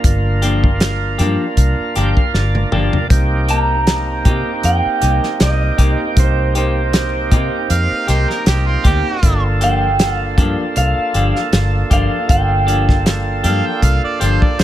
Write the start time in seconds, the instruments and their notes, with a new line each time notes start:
Already playing: tonewheel organ A#3 D4 F4 A#4
0.04 fingered electric bass G1, kick, closed hi-hat
0.42 clean electric guitar F3 A#3 D4 G4, closed hi-hat
0.64 kick
0.80 snare, closed hi-hat
1.18 fingered electric bass G2, clean electric guitar F3 A#3 D4 G4, closed hi-hat
1.57 fingered electric bass C2, kick, closed hi-hat
1.80 muted fingered electric bass stroke
1.96 fingered electric bass G1, clean electric guitar F3 A#3 D4 G4, tonewheel organ G5, closed hi-hat
2.16 tonewheel organ F5, kick
2.34 fingered electric bass G1, tonewheel organ D5, snare
2.55 high tom
2.72 fingered electric bass G1, clean electric guitar F3 A#3 D4 G4, tonewheel organ D5, mid tom
2.93 floor tom
3.08 fingered electric bass C2, tonewheel organ A#3 C4 D#4, kick, closed hi-hat
3.12 tonewheel organ G4
3.48 clean electric guitar A#3 D#4 G4 A#5, closed hi-hat
3.87 snare, closed hi-hat
4.25 fingered electric bass C3, clean electric guitar A#3 D#4 G4, kick, closed hi-hat
4.63 fingered electric bass F2, clean electric guitar G5, closed hi-hat
4.85 muted fingered electric bass stroke
5.01 fingered electric bass C2, clean electric guitar A#3 D#4 G4, closed hi-hat
5.23 snare
5.40 fingered electric bass C2, clean electric guitar D#5, snare, closed hi-hat
5.78 fingered electric bass C2, clean electric guitar A#3 D#4 G4, kick, closed hi-hat
6.17 fingered electric bass C2, clean electric guitar C5, kick, closed hi-hat
6.55 clean electric guitar A#3 D#4 G4 C5, closed hi-hat
6.93 snare, closed hi-hat
7.31 fingered electric bass C3, clean electric guitar A#3 D#4 G4, kick, closed hi-hat
7.70 fingered electric bass F2, harmonica F5, closed hi-hat
7.91 muted fingered electric bass stroke
8.07 fingered electric bass C2, clean electric guitar A#3 D#4 G4, harmonica C5, snare, closed hi-hat
8.30 harmonica A#4, snare
8.46 fingered electric bass C2, harmonica G4, snare, closed hi-hat
8.68 harmonica F4
8.84 fingered electric bass D2, clean electric guitar A#3 D#4 G4, harmonica G4, kick, closed hi-hat
9.21 fingered electric bass G1, tonewheel organ A#3 D4 F4, kick, closed hi-hat
9.25 tonewheel organ A4
9.61 clean electric guitar F3 A#3 D4 G4 G5, closed hi-hat
9.99 snare, closed hi-hat
10.17 clean electric guitar F5
10.38 fingered electric bass G2, clean electric guitar F3 A#3 D4 G4, kick, closed hi-hat
10.76 fingered electric bass C2, clean electric guitar F5, closed hi-hat
11.14 fingered electric bass G1, clean electric guitar F3 A#3 D4 G4, closed hi-hat
11.36 snare
11.52 fingered electric bass G1, snare, closed hi-hat
11.90 fingered electric bass G1, clean electric guitar F3 A#3 D4 G4 F5, kick, closed hi-hat
12.29 fingered electric bass G1, clean electric guitar G5, kick, closed hi-hat
12.67 clean electric guitar F3 A#3 D4 G4, closed hi-hat
12.89 kick, snare
13.06 snare, closed hi-hat
13.44 fingered electric bass G2, clean electric guitar F3 A#3 D4 G4, harmonica F5, closed hi-hat
13.66 harmonica G5
13.75 clean electric guitar F5
13.82 fingered electric bass C2, harmonica F5, kick, closed hi-hat
14.04 harmonica D5
14.20 fingered electric bass G1, clean electric guitar F3 A#3 D4 G4, harmonica C5, closed hi-hat
14.42 harmonica D5, kick
14.59 fingered electric bass G1, harmonica C5, snare, closed hi-hat